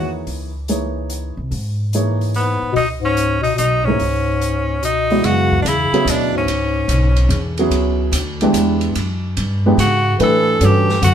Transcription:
Already playing: upright bass E2, bass clarinet D#3, grand piano E3 A#3 D#4 G#4 C#5, tenor saxophone F#4
0.27 upright bass C#2, open hi-hat
0.68 grand piano E3 A#3 D#4 G#4 C#5, closed hi-hat
1.10 closed hi-hat
1.37 upright bass C2
1.51 upright bass G#2, open hi-hat
1.93 grand piano E3 A#3 D#4 G#4 C#5, closed hi-hat
2.21 open hi-hat
2.33 bass clarinet G#2, tenor saxophone B3, open hi-hat
2.62 muted upright bass stroke
2.72 upright bass C#2, bass clarinet B2, tenor saxophone D#4, open hi-hat
3.00 bass clarinet G#2
3.05 tenor saxophone C#4
3.17 closed hi-hat
3.41 bass clarinet B2, tenor saxophone D#4, open hi-hat
3.55 upright bass B1, bass clarinet B2, tenor saxophone D#4, closed hi-hat
3.84 bass clarinet G#2, grand piano E3 A#3 G#4, tenor saxophone C#4
3.88 grand piano D#4 C#5
4.00 upright bass C#2, open hi-hat
4.42 closed hi-hat
4.81 bass clarinet B2, tenor saxophone D#4, closed hi-hat
5.10 grand piano E3 G#3 B3 F#4 D5, open hi-hat
5.23 upright bass F#2, bass clarinet C#3, tenor saxophone F#4, ride
5.52 kick
5.60 bass clarinet B2 C#3, tenor saxophone D4
5.65 upright bass E2, tenor saxophone E4, hi-hat pedal, ride
5.92 grand piano F#3 B3 C#4 E4 G#4, muted upright bass stroke, ride
6.05 upright bass D2, bass clarinet B2, hi-hat pedal, ride
6.09 tenor saxophone D4
6.34 bass clarinet G#2, tenor saxophone C#4
6.46 upright bass C#2, ride
6.88 upright bass B1, hi-hat pedal, ride
7.16 ride
7.29 upright bass E2, ride
7.58 grand piano F#3 B3 C#4 E4 G#4, ride
7.70 upright bass C#2, ride
8.12 upright bass D2, hi-hat pedal, ride
8.41 grand piano E3 G#3 B3 D4 G4, ride
8.53 upright bass E2, hi-hat pedal, ride
8.81 ride
8.95 upright bass F#2, ride
9.37 upright bass G2, ride
9.66 grand piano E3 G#3 B3 D4 G4
9.77 upright bass G#2, bass clarinet C#3, tenor saxophone F#4, hi-hat pedal, ride
10.19 upright bass A2, bass clarinet E3, grand piano E3 A3 D4 G4 B4, ride
10.23 tenor saxophone A4
10.61 upright bass G2, grand piano D3 G3 C#4 F#4 A4, bass clarinet E3, hi-hat pedal, ride
10.65 tenor saxophone G4
10.89 snare
11.02 upright bass F#2, bass clarinet D3, tenor saxophone F#4, hi-hat pedal, ride

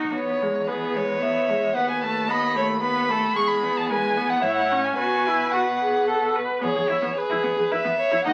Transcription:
Already playing: viola D#4, violin F#4
0.14 cello E2, viola B3, violin C#5
0.42 viola G#3
0.68 viola B3, violin G#4 B4
0.96 viola G#3, violin C#5
1.22 viola B3, violin E5
1.50 viola G#3
1.75 cello D#2, viola B3, violin B4 F#5
1.90 violin G#5
2.02 viola A3, violin A5
2.28 viola B3, violin D#5 B5
2.55 viola A3, violin C#5
2.82 viola B3, violin B4 B5
3.09 viola A3, violin A4
3.36 cello E2, viola G#3, violin G#4 C#6
3.47 violin B5
3.63 viola B3
3.77 violin A5
3.89 viola G#3, violin B4 G#5
4.17 viola B3
4.29 violin F#5
4.42 cello A2, viola E4, violin C#5 E5
4.55 violin F#5
4.72 viola C#4
4.84 violin G#5
4.96 cello B2, viola F#4, violin B4 G#5
5.27 viola E4
5.51 viola F#4, violin F#5
5.81 viola G#4
6.07 viola A4
6.36 viola B4
6.61 cello E2, viola B3, violin G#4 C#5
6.76 cello E2, viola G#4
6.89 cello E2, viola E4, violin E4
7.02 cello E2, viola B3
7.17 violin G#4 B4
7.30 cello E2, viola E4
7.43 cello E2, viola B3
7.57 cello E2, viola G#4
7.71 cello E2, viola E4, violin B4 E5
7.84 cello E2, viola B3
8.00 violin C#5
8.11 cello E2, viola E4
8.25 cello D#2, viola D#4, violin D#5 F#5

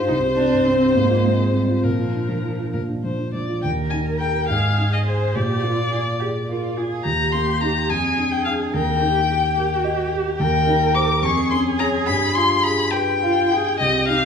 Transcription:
Already playing: grand piano G2 G3 D#4 G4, violin C5
0.07 grand piano C2, cello D#4
0.25 grand piano G4
0.36 grand piano C4, cello D4
0.53 grand piano G2
0.65 cello C4, grand piano C4
0.81 grand piano G4
0.95 grand piano G#2, cello A#3
1.09 grand piano F4
1.24 cello G#3, grand piano C4
1.38 grand piano G#3
1.52 cello G3, grand piano C4
1.69 grand piano F4
1.84 grand piano A#2, cello F3, violin A#4
1.99 grand piano F4
2.14 grand piano D4
2.29 grand piano F3
2.43 grand piano D4
2.59 grand piano F4
2.73 grand piano A#2, violin A#4
2.89 grand piano D4
3.04 grand piano F3, violin C5
3.19 grand piano D4
3.34 grand piano F3, violin D5
3.49 grand piano F4
3.62 grand piano D#2, cello A#4, violin G5
3.90 grand piano D#4, violin G#5
4.19 grand piano G4 A#4, violin G5
4.48 grand piano G#2, cello G#4, violin F5
4.78 grand piano D#4
4.93 violin D#5
5.05 grand piano G#4, violin C5
5.35 grand piano A#2, cello G4, violin D5
5.62 grand piano A#3, cello F4
5.92 grand piano F4, cello G#4
6.20 cello G4, grand piano G#4
6.49 cello F4, grand piano A#4
6.77 grand piano F4, cello G#4
7.04 grand piano D#2, cello G4, violin A#5
7.32 grand piano A#3, violin C6
7.61 grand piano D#4 G4, violin A#5
7.89 grand piano F2, cello G#4, violin G#5
8.18 grand piano D4
8.31 violin G5
8.45 grand piano D4 G#4, violin F5
8.74 grand piano D#2, cello A#4, violin G5
9.00 grand piano D#4, cello G4
9.29 cello G4, grand piano G4
9.57 grand piano A#4
9.84 grand piano D#5
10.12 grand piano G4
10.39 grand piano D#2, cello A#4, violin G5
10.67 grand piano D#4
10.95 grand piano G4 C5, violin D6
11.22 grand piano F2, cello G#4, violin C#6
11.51 grand piano C#4, violin C6
11.79 grand piano G#4 C#5, violin A#5
12.07 grand piano G2, violin B5
12.35 grand piano F4, violin C6
12.63 grand piano G#4, violin B5
12.91 cello G4, grand piano B4, violin G5
13.21 cello F4, grand piano F5
13.51 grand piano G#4, cello G#4
13.79 grand piano C2, cello G4, violin D#5
14.08 grand piano D#4, violin F5

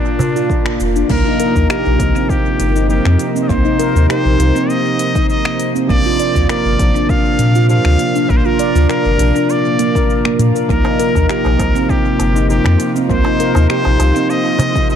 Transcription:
Already playing: synth drone A#2 A#3 F4 D5, muted trumpet D4
0.19 darbuka dum, shaker
0.36 handpan F4, shaker
0.50 kick, shaker
0.66 finger snap, darbuka ka
0.80 sub bass F1, shaker
0.96 handpan D4, shaker
1.08 sub bass C2, tine electric piano C3 F3 A#3, synth drone C3, handpan A#3, muted trumpet A#4, kick, crash, shaker
1.12 tine electric piano D#4
1.26 handpan D#4
1.40 handpan A#4, closed hi-hat, shaker
1.54 sub bass D#2, synth drone D#4, handpan D#4, kick, shaker
1.70 handpan G4, muted trumpet A#4, synth drone C5, finger snap, shaker
1.86 sub bass A#1
1.98 sub bass C2, tine electric piano C3 F3 A#3, kick, closed hi-hat, shaker
2.02 tine electric piano D#4
2.16 handpan C4, shaker
2.29 muted trumpet G4, kick, shaker
2.59 sub bass G1, closed hi-hat, shaker
2.76 handpan D#4, shaker
2.88 tine electric piano C3 F3 A#3 D#4, muted trumpet G4, shaker
3.05 sub bass F2, finger snap
3.19 closed hi-hat, shaker
3.35 handpan C4, shaker
3.42 muted trumpet D#5
3.48 sub bass C2, tine electric piano C3 F3 A#3 D#4, handpan A#3, muted trumpet C5, kick, shaker
3.65 handpan D#4
3.79 handpan A#4, closed hi-hat, shaker
3.95 sub bass D#2, handpan D#4, shaker
4.09 handpan G4, muted trumpet C5, finger snap, shaker
4.25 sub bass A#1
4.37 sub bass C2, tine electric piano C3 F3 A#3 D#4, closed hi-hat, shaker
4.56 handpan C4, shaker
4.69 muted trumpet D#5, shaker
4.99 closed hi-hat, shaker
5.15 handpan D#4, kick, shaker
5.30 muted trumpet D#5, shaker
5.45 finger snap
5.59 closed hi-hat, shaker
5.75 handpan C4, shaker
5.87 sub bass A#1, synth drone A#2, tine electric piano C3 F3 A#3 D4, handpan A#3, muted trumpet D5, kick, shaker
6.06 handpan F4
6.20 handpan D5, closed hi-hat, shaker
6.35 sub bass D2, handpan F4, kick, shaker
6.49 handpan A#4, muted trumpet D5, finger snap, shaker
6.65 sub bass G1
6.77 sub bass A#1, tine electric piano C3 F3 A#3 D4, kick, closed hi-hat, shaker
6.96 handpan D4, shaker
7.09 muted trumpet F5, kick, shaker
7.35 sub bass A#2, synth drone F4, closed hi-hat
7.39 shaker
7.54 handpan F4, synth drone D5, shaker
7.68 tine electric piano C3 F3 A#3 D4, muted trumpet F5, shaker
7.85 sub bass D2, finger snap
7.99 closed hi-hat, shaker
8.15 handpan D4, shaker
8.27 sub bass A#1, tine electric piano C3 F3 A#3 D4, handpan A#3, muted trumpet A#4, kick, shaker
8.37 muted trumpet C5
8.46 handpan F4, muted trumpet A#4
8.59 handpan D5, closed hi-hat, shaker
8.75 sub bass D2, handpan F4, shaker
8.89 handpan A#4, muted trumpet A#4, finger snap, shaker
9.05 sub bass G1
9.17 sub bass A#1, tine electric piano C3 F3 A#3, closed hi-hat, shaker
9.21 tine electric piano D4
9.35 handpan D4, shaker
9.50 muted trumpet D5, shaker
9.79 handpan A#3, closed hi-hat, shaker
9.95 handpan A#4, kick, shaker
10.10 shaker
10.25 handpan A#3, finger snap
10.39 sub bass A#2, closed hi-hat, shaker
10.55 handpan A#4, shaker
10.67 sub bass C2, tine electric piano C3 F3 A#3 D#4, synth drone C3, handpan A#3, synth texture F4 F5, muted trumpet A#4, kick, shaker
10.85 handpan D#4, darbuka tek
10.99 handpan A#4, closed hi-hat, shaker
11.15 sub bass D#2, handpan D#4, kick, darbuka ka, shaker
11.29 handpan G4, muted trumpet A#4, finger snap, shaker
11.45 sub bass A#1, darbuka ka, darbuka tek
11.57 sub bass C2, tine electric piano C3 F3 A#3, kick, closed hi-hat, darbuka tek, shaker
11.61 tine electric piano D#4
11.72 handpan C4, synth drone D#4, shaker
11.89 muted trumpet G4, kick, shaker
12.08 synth drone C5
12.19 sub bass G1, closed hi-hat, darbuka ka, shaker
12.36 handpan D#4, shaker
12.48 tine electric piano C3 F3 A#3 D#4, muted trumpet G4, shaker
12.64 sub bass F2, finger snap, darbuka dum
12.79 closed hi-hat, darbuka ka, shaker
12.96 handpan C4, shaker
13.08 sub bass C2, tine electric piano C3 F3 A#3 D#4, handpan A#3, muted trumpet C5, kick, shaker
13.25 handpan D#4, darbuka tek
13.40 handpan A#4, closed hi-hat, shaker
13.55 sub bass D#2, handpan D#4, darbuka ka, darbuka tek, shaker
13.70 handpan G4, muted trumpet C5, finger snap, shaker
13.85 sub bass A#1, darbuka ka, darbuka tek
13.98 sub bass C2, tine electric piano C3 F3 A#3, closed hi-hat, darbuka tek, shaker
14.02 tine electric piano D#4
14.16 handpan C4, shaker
14.30 muted trumpet D#5, shaker
14.59 closed hi-hat, darbuka dum, shaker
14.75 handpan D#4, kick, shaker
14.90 muted trumpet D#5, shaker

